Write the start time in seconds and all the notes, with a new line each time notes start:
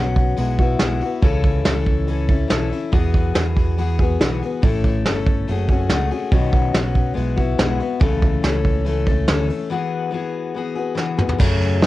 Already playing: B1 F#3 B3 C#4
0.00 F#4
0.16 kick, open hi-hat
0.36 B1 G#3 B3 E4 F#4, open hi-hat
0.59 B3 E4 F#4, kick, open hi-hat
0.79 B1 G#3 B3 E4 F#4, snare, open hi-hat
1.00 E4 F#4, open hi-hat
1.05 B3
1.22 C#2 C#3 E3 C#4 E4 A4, kick, open hi-hat
1.44 kick, open hi-hat
1.65 C#2 E3 C#4 E4 A4, snare, open hi-hat
1.86 kick, open hi-hat
2.07 E3 C#4 E4 A4, open hi-hat
2.29 C#4 E4 A4, kick, open hi-hat
2.48 B1 E3 C#4 E4 A4, snare, open hi-hat
2.69 C#4 E4 A4, open hi-hat
2.92 E2 E3 B3 F#4 G#4, kick, open hi-hat
3.14 kick, open hi-hat
3.34 E2 E3 B3 F#4 G#4, snare, open hi-hat
3.57 kick, open hi-hat
3.78 E3 B3 F#4 G#4, open hi-hat
3.99 B3 F#4 G#4, kick, open hi-hat
4.20 B1 E3 B3 F#4 G#4, snare, open hi-hat
4.41 B3 F#4 G#4, open hi-hat
4.62 A1 A2 E3 A3 C#4 E4 A4, kick, open hi-hat
4.84 kick, open hi-hat
5.05 G1 A3 C#4 E4 A4, snare, open hi-hat
5.27 kick, open hi-hat
5.48 F#1 A3 C#4 F#4 G#4, open hi-hat
5.69 C#4 F#4 G#4, kick, open hi-hat
5.73 A3
5.90 C#2 A3 C#4 F#4, snare, open hi-hat
5.94 G#4
6.11 A3 C#4 F#4 G#4, open hi-hat
6.32 B1 B2 D#3 F#3 B3 C#4 F#4, kick, open hi-hat
6.53 kick, open hi-hat
6.74 B1 F#3 B3 C#4 F#4, snare, open hi-hat
6.95 kick, open hi-hat
7.14 B1 G#3 B3 E4 F#4, open hi-hat
7.37 B3 E4 F#4, kick, open hi-hat
7.58 B1 G#3 B3 E4 F#4, snare
7.80 B3 E4 F#4, open hi-hat
8.00 C#2 C#3 E3 A3 C#4 A4, kick, open hi-hat
8.22 kick, open hi-hat
8.43 C#2 E3 A3 C#4 A4, snare, open hi-hat
8.65 kick, open hi-hat
8.85 E3 A3 C#4, open hi-hat
8.89 A4
9.07 C#4 A4, kick, open hi-hat
9.11 A3
9.28 D2 E3 A3 C#4, snare, open hi-hat
9.32 A4
9.48 A3 C#4 A4, open hi-hat
9.70 E3 B3 F#4 G#4
10.11 E3 B3 F#4 G#4
10.54 E3 B3 F#4 G#4
10.75 B3 F#4 G#4
10.95 E3 B3 F#4 G#4, snare
11.17 B3 F#4 G#4, mid tom
11.29 floor tom
11.38 F#2 C#3 F#3 A3 C#4 G#4, kick, crash
11.61 open hi-hat
11.81 F#3 A3, snare, open hi-hat